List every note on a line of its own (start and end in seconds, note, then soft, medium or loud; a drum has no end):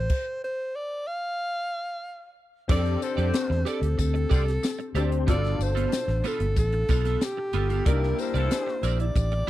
0.00 0.44 C5 loud
0.10 kick loud
0.10 crash loud
0.44 0.77 C5 medium
0.76 1.09 D5 medium
1.08 2.37 F5 loud
2.68 2.95 F2 loud
2.68 4.91 C4 medium
2.68 4.92 D4 medium
2.68 2.99 G4 medium
2.68 4.92 G4 medium
2.68 2.99 A4 medium
2.68 4.92 A4 medium
2.68 3.00 D5 loud
2.68 3.05 D5 medium
2.68 kick loud
2.68 crash loud
2.68 tambourine soft
2.85 closed hi-hat soft
3.02 3.15 D3 medium
3.02 3.15 C4 medium
3.02 3.15 A4 medium
3.02 3.70 C5 loud
3.02 muted clean electric guitar stroke soft
3.02 closed hi-hat medium
3.02 tambourine medium
3.17 3.31 F2 medium
3.17 3.64 D3 medium
3.17 3.64 C4 medium
3.17 3.64 G4 medium
3.17 3.34 G4 medium
3.17 3.34 A4 medium
3.17 3.33 D5 medium
3.17 closed hi-hat medium
3.34 snare loud
3.34 closed hi-hat loud
3.34 tambourine medium
3.50 3.63 E2 medium
3.50 muted clean electric guitar stroke soft
3.50 snare soft
3.65 3.86 G4 medium
3.65 3.81 A4 medium
3.65 4.00 A4 medium
3.65 3.81 D5 loud
3.65 closed hi-hat medium
3.65 tambourine medium
3.82 3.95 D2 medium
3.82 muted clean electric guitar stroke soft
3.82 closed hi-hat medium
3.98 4.24 D2 medium
3.98 4.93 A4 medium
3.98 muted clean electric guitar stroke soft
3.98 kick medium
3.98 closed hi-hat medium
3.98 tambourine medium
4.14 muted clean electric guitar stroke medium
4.14 closed hi-hat soft
4.30 4.57 C2 medium
4.30 4.41 D3 medium
4.30 4.41 C4 medium
4.30 4.41 F4 medium
4.30 4.51 G4 medium
4.30 4.46 A4 medium
4.30 4.45 D5 loud
4.30 kick loud
4.30 closed hi-hat medium
4.30 tambourine soft
4.46 muted clean electric guitar stroke soft
4.46 snare soft
4.46 closed hi-hat medium
4.63 muted clean electric guitar stroke soft
4.63 snare loud
4.63 closed hi-hat medium
4.63 tambourine medium
4.79 muted clean electric guitar stroke medium
4.79 closed hi-hat soft
4.95 5.29 D2 medium
4.95 5.28 C4 medium
4.95 5.26 D4 medium
4.95 5.16 G4 medium
4.95 5.28 G4 medium
4.95 5.11 A4 medium
4.95 5.28 C5 medium
4.95 5.10 D5 medium
4.95 closed hi-hat medium
4.95 tambourine soft
5.11 muted clean electric guitar stroke soft
5.11 closed hi-hat medium
5.27 5.54 G1 loud
5.27 7.82 B2 medium
5.27 5.57 B3 medium
5.27 7.82 D4 medium
5.27 5.58 F4 medium
5.27 7.83 F4 medium
5.27 5.58 A4 medium
5.27 7.83 A4 medium
5.27 5.64 D5 medium
5.27 kick loud
5.27 closed hi-hat loud
5.27 tambourine soft
5.45 snare soft
5.45 closed hi-hat soft
5.59 5.85 G1 loud
5.59 6.29 C5 loud
5.59 muted clean electric guitar stroke soft
5.59 closed hi-hat medium
5.59 tambourine medium
5.75 5.93 B3 soft
5.75 5.92 F4 medium
5.75 5.92 A4 medium
5.75 closed hi-hat medium
5.92 snare loud
5.92 closed hi-hat loud
5.92 tambourine medium
6.08 6.21 A1 medium
6.08 muted clean electric guitar stroke soft
6.08 snare soft
6.08 closed hi-hat soft
6.24 6.45 B3 medium
6.24 6.41 F4 medium
6.24 6.40 A4 medium
6.24 6.58 A4 medium
6.24 closed hi-hat medium
6.24 tambourine medium
6.40 6.54 G1 medium
6.40 muted clean electric guitar stroke medium
6.40 closed hi-hat medium
6.56 6.83 A1 loud
6.56 7.26 A4 loud
6.56 muted clean electric guitar stroke soft
6.56 kick medium
6.56 closed hi-hat medium
6.56 tambourine medium
6.72 muted clean electric guitar stroke soft
6.72 closed hi-hat soft
6.89 7.15 B1 loud
6.89 7.05 B3 medium
6.89 7.04 F4 medium
6.89 7.04 A4 loud
6.89 kick loud
6.89 closed hi-hat medium
6.89 tambourine soft
7.05 7.20 B3 medium
7.05 7.21 F4 medium
7.05 7.21 A4 medium
7.05 snare soft
7.05 closed hi-hat medium
7.21 7.89 G4 medium
7.21 muted clean electric guitar stroke soft
7.21 snare loud
7.21 closed hi-hat medium
7.21 tambourine medium
7.37 muted clean electric guitar stroke medium
7.53 7.80 G1 medium
7.53 7.70 B3 medium
7.53 7.69 F4 medium
7.53 7.68 A4 medium
7.53 closed hi-hat medium
7.69 7.87 B3 soft
7.69 7.85 F4 medium
7.69 7.86 A4 medium
7.69 closed hi-hat medium
7.85 8.12 C2 loud
7.85 9.50 A#3 medium
7.85 9.50 D4 medium
7.85 7.93 D#4 soft
7.85 8.16 E4 medium
7.85 9.50 G4 medium
7.85 8.16 A#4 medium
7.85 8.21 A#4 medium
7.85 8.16 D5 medium
7.85 kick loud
7.85 closed hi-hat loud
7.93 9.50 E4 medium
8.03 snare soft
8.18 8.32 G3 medium
8.18 8.32 E4 medium
8.18 8.32 A#4 medium
8.18 9.00 C5 loud
8.18 muted clean electric guitar stroke soft
8.18 closed hi-hat medium
8.18 tambourine medium
8.34 8.48 C2 loud
8.34 8.81 E3 medium
8.34 8.81 D4 medium
8.34 8.51 E4 medium
8.34 8.81 A4 loud
8.34 8.51 A#4 medium
8.34 8.51 D5 medium
8.34 closed hi-hat medium
8.51 snare loud
8.51 closed hi-hat loud
8.51 tambourine medium
8.67 muted clean electric guitar stroke soft
8.67 snare soft
8.83 9.09 A#1 medium
8.83 9.04 E4 medium
8.83 8.99 A#4 medium
8.83 8.98 D5 medium
8.83 closed hi-hat medium
8.83 tambourine soft
8.99 9.50 D5 medium
8.99 muted clean electric guitar stroke soft
8.99 closed hi-hat medium
9.16 9.42 A1 loud
9.16 muted clean electric guitar stroke soft
9.16 kick medium
9.16 closed hi-hat medium
9.16 tambourine medium
9.32 muted clean electric guitar stroke medium
9.32 closed hi-hat soft